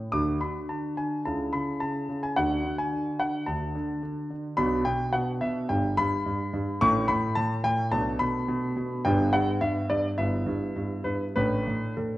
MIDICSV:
0, 0, Header, 1, 2, 480
1, 0, Start_track
1, 0, Tempo, 558140
1, 104, Time_signature, 4, 2, 24, 8
1, 7783, Tempo, 571429
1, 9223, Tempo, 603622
1, 10347, End_track
2, 0, Start_track
2, 0, Title_t, "Grand piano"
2, 0, Program_c, 0, 0
2, 0, Note_on_c, 0, 45, 41
2, 96, Note_off_c, 0, 45, 0
2, 101, Note_on_c, 0, 86, 88
2, 108, Note_on_c, 0, 62, 45
2, 110, Note_on_c, 0, 38, 60
2, 111, Note_on_c, 0, 66, 44
2, 112, Note_on_c, 0, 50, 61
2, 321, Note_off_c, 0, 86, 0
2, 343, Note_off_c, 0, 38, 0
2, 344, Note_off_c, 0, 50, 0
2, 348, Note_on_c, 0, 83, 74
2, 357, Note_on_c, 0, 50, 43
2, 494, Note_off_c, 0, 83, 0
2, 589, Note_off_c, 0, 50, 0
2, 594, Note_on_c, 0, 81, 57
2, 606, Note_on_c, 0, 50, 42
2, 813, Note_off_c, 0, 81, 0
2, 830, Note_off_c, 0, 50, 0
2, 836, Note_on_c, 0, 80, 66
2, 843, Note_on_c, 0, 50, 50
2, 1048, Note_off_c, 0, 62, 0
2, 1049, Note_off_c, 0, 66, 0
2, 1056, Note_off_c, 0, 80, 0
2, 1077, Note_off_c, 0, 50, 0
2, 1079, Note_on_c, 0, 81, 64
2, 1085, Note_on_c, 0, 64, 35
2, 1087, Note_on_c, 0, 49, 49
2, 1088, Note_on_c, 0, 37, 44
2, 1310, Note_off_c, 0, 49, 0
2, 1313, Note_on_c, 0, 83, 76
2, 1319, Note_off_c, 0, 37, 0
2, 1321, Note_off_c, 0, 81, 0
2, 1323, Note_on_c, 0, 49, 52
2, 1533, Note_off_c, 0, 83, 0
2, 1549, Note_off_c, 0, 49, 0
2, 1552, Note_on_c, 0, 81, 77
2, 1562, Note_on_c, 0, 49, 52
2, 1784, Note_off_c, 0, 49, 0
2, 1797, Note_on_c, 0, 49, 53
2, 1882, Note_off_c, 0, 81, 0
2, 1918, Note_on_c, 0, 80, 77
2, 2012, Note_off_c, 0, 64, 0
2, 2032, Note_off_c, 0, 49, 0
2, 2034, Note_on_c, 0, 78, 90
2, 2037, Note_on_c, 0, 66, 48
2, 2039, Note_on_c, 0, 50, 64
2, 2040, Note_off_c, 0, 80, 0
2, 2040, Note_on_c, 0, 38, 57
2, 2041, Note_on_c, 0, 62, 44
2, 2266, Note_off_c, 0, 50, 0
2, 2273, Note_off_c, 0, 38, 0
2, 2278, Note_on_c, 0, 50, 56
2, 2361, Note_off_c, 0, 78, 0
2, 2394, Note_on_c, 0, 80, 84
2, 2507, Note_off_c, 0, 50, 0
2, 2520, Note_on_c, 0, 50, 51
2, 2742, Note_off_c, 0, 50, 0
2, 2748, Note_on_c, 0, 78, 81
2, 2752, Note_off_c, 0, 80, 0
2, 2754, Note_on_c, 0, 50, 48
2, 2974, Note_off_c, 0, 50, 0
2, 2979, Note_on_c, 0, 81, 73
2, 2987, Note_on_c, 0, 50, 50
2, 2989, Note_on_c, 0, 38, 48
2, 2990, Note_off_c, 0, 78, 0
2, 3215, Note_off_c, 0, 50, 0
2, 3224, Note_off_c, 0, 38, 0
2, 3228, Note_on_c, 0, 50, 63
2, 3452, Note_off_c, 0, 50, 0
2, 3464, Note_on_c, 0, 50, 55
2, 3688, Note_off_c, 0, 50, 0
2, 3700, Note_on_c, 0, 50, 56
2, 3702, Note_off_c, 0, 81, 0
2, 3910, Note_off_c, 0, 66, 0
2, 3912, Note_off_c, 0, 62, 0
2, 3930, Note_on_c, 0, 83, 106
2, 3935, Note_off_c, 0, 50, 0
2, 3936, Note_on_c, 0, 62, 57
2, 3937, Note_on_c, 0, 66, 57
2, 3938, Note_on_c, 0, 35, 71
2, 3938, Note_on_c, 0, 47, 76
2, 4164, Note_off_c, 0, 47, 0
2, 4170, Note_on_c, 0, 79, 98
2, 4173, Note_off_c, 0, 35, 0
2, 4176, Note_off_c, 0, 83, 0
2, 4177, Note_on_c, 0, 47, 60
2, 4403, Note_off_c, 0, 47, 0
2, 4408, Note_on_c, 0, 78, 78
2, 4416, Note_off_c, 0, 79, 0
2, 4416, Note_on_c, 0, 47, 59
2, 4556, Note_off_c, 0, 78, 0
2, 4647, Note_off_c, 0, 47, 0
2, 4651, Note_on_c, 0, 76, 86
2, 4660, Note_on_c, 0, 47, 61
2, 4861, Note_off_c, 0, 62, 0
2, 4862, Note_off_c, 0, 66, 0
2, 4871, Note_off_c, 0, 76, 0
2, 4892, Note_on_c, 0, 79, 83
2, 4893, Note_off_c, 0, 47, 0
2, 4897, Note_on_c, 0, 43, 60
2, 4899, Note_on_c, 0, 62, 44
2, 4900, Note_on_c, 0, 67, 40
2, 4901, Note_on_c, 0, 31, 51
2, 5130, Note_off_c, 0, 43, 0
2, 5135, Note_off_c, 0, 31, 0
2, 5135, Note_on_c, 0, 83, 114
2, 5137, Note_off_c, 0, 79, 0
2, 5143, Note_on_c, 0, 43, 69
2, 5368, Note_off_c, 0, 43, 0
2, 5381, Note_on_c, 0, 43, 59
2, 5605, Note_off_c, 0, 43, 0
2, 5618, Note_on_c, 0, 43, 65
2, 5825, Note_off_c, 0, 83, 0
2, 5827, Note_off_c, 0, 62, 0
2, 5827, Note_off_c, 0, 67, 0
2, 5853, Note_off_c, 0, 43, 0
2, 5858, Note_on_c, 0, 85, 127
2, 5861, Note_on_c, 0, 33, 73
2, 5862, Note_on_c, 0, 64, 60
2, 5864, Note_on_c, 0, 45, 90
2, 5864, Note_on_c, 0, 57, 63
2, 6081, Note_off_c, 0, 45, 0
2, 6088, Note_on_c, 0, 83, 105
2, 6094, Note_on_c, 0, 45, 67
2, 6097, Note_off_c, 0, 33, 0
2, 6102, Note_off_c, 0, 85, 0
2, 6322, Note_off_c, 0, 45, 0
2, 6323, Note_on_c, 0, 81, 100
2, 6335, Note_on_c, 0, 45, 64
2, 6337, Note_off_c, 0, 83, 0
2, 6473, Note_off_c, 0, 81, 0
2, 6561, Note_off_c, 0, 45, 0
2, 6569, Note_on_c, 0, 79, 109
2, 6573, Note_on_c, 0, 45, 63
2, 6788, Note_off_c, 0, 64, 0
2, 6789, Note_off_c, 0, 57, 0
2, 6790, Note_off_c, 0, 79, 0
2, 6806, Note_on_c, 0, 81, 94
2, 6810, Note_off_c, 0, 45, 0
2, 6812, Note_on_c, 0, 35, 66
2, 6813, Note_on_c, 0, 47, 67
2, 6813, Note_on_c, 0, 62, 48
2, 6814, Note_on_c, 0, 57, 49
2, 6954, Note_off_c, 0, 81, 0
2, 7043, Note_off_c, 0, 47, 0
2, 7045, Note_on_c, 0, 83, 105
2, 7048, Note_off_c, 0, 35, 0
2, 7056, Note_on_c, 0, 47, 63
2, 7280, Note_off_c, 0, 47, 0
2, 7293, Note_on_c, 0, 47, 73
2, 7525, Note_off_c, 0, 47, 0
2, 7538, Note_on_c, 0, 47, 63
2, 7739, Note_off_c, 0, 83, 0
2, 7742, Note_off_c, 0, 57, 0
2, 7742, Note_off_c, 0, 62, 0
2, 7773, Note_off_c, 0, 47, 0
2, 7779, Note_on_c, 0, 79, 103
2, 7785, Note_on_c, 0, 43, 89
2, 7786, Note_on_c, 0, 59, 57
2, 7787, Note_on_c, 0, 62, 63
2, 7788, Note_on_c, 0, 31, 70
2, 7993, Note_off_c, 0, 79, 0
2, 8009, Note_off_c, 0, 43, 0
2, 8014, Note_on_c, 0, 78, 94
2, 8015, Note_off_c, 0, 31, 0
2, 8022, Note_on_c, 0, 43, 70
2, 8158, Note_off_c, 0, 78, 0
2, 8244, Note_off_c, 0, 43, 0
2, 8253, Note_on_c, 0, 76, 91
2, 8256, Note_on_c, 0, 43, 60
2, 8487, Note_off_c, 0, 43, 0
2, 8492, Note_off_c, 0, 76, 0
2, 8494, Note_on_c, 0, 74, 89
2, 8501, Note_on_c, 0, 43, 60
2, 8638, Note_off_c, 0, 74, 0
2, 8703, Note_off_c, 0, 59, 0
2, 8703, Note_off_c, 0, 62, 0
2, 8726, Note_off_c, 0, 43, 0
2, 8731, Note_on_c, 0, 76, 86
2, 8734, Note_on_c, 0, 31, 55
2, 8735, Note_on_c, 0, 59, 44
2, 8738, Note_on_c, 0, 64, 39
2, 8739, Note_on_c, 0, 43, 53
2, 8958, Note_off_c, 0, 43, 0
2, 8969, Note_off_c, 0, 31, 0
2, 8971, Note_on_c, 0, 43, 66
2, 9208, Note_off_c, 0, 43, 0
2, 9221, Note_on_c, 0, 43, 54
2, 9423, Note_off_c, 0, 76, 0
2, 9437, Note_off_c, 0, 43, 0
2, 9444, Note_on_c, 0, 71, 76
2, 9449, Note_on_c, 0, 43, 51
2, 9592, Note_off_c, 0, 71, 0
2, 9666, Note_off_c, 0, 59, 0
2, 9667, Note_off_c, 0, 64, 0
2, 9686, Note_off_c, 0, 43, 0
2, 9694, Note_on_c, 0, 71, 98
2, 9698, Note_on_c, 0, 57, 50
2, 9701, Note_on_c, 0, 33, 63
2, 9701, Note_on_c, 0, 45, 67
2, 9701, Note_on_c, 0, 62, 50
2, 9934, Note_off_c, 0, 45, 0
2, 9935, Note_off_c, 0, 33, 0
2, 9945, Note_on_c, 0, 45, 52
2, 10149, Note_off_c, 0, 71, 0
2, 10172, Note_off_c, 0, 45, 0
2, 10179, Note_on_c, 0, 69, 61
2, 10184, Note_on_c, 0, 45, 50
2, 10347, Note_off_c, 0, 45, 0
2, 10347, Note_off_c, 0, 57, 0
2, 10347, Note_off_c, 0, 62, 0
2, 10347, Note_off_c, 0, 69, 0
2, 10347, End_track
0, 0, End_of_file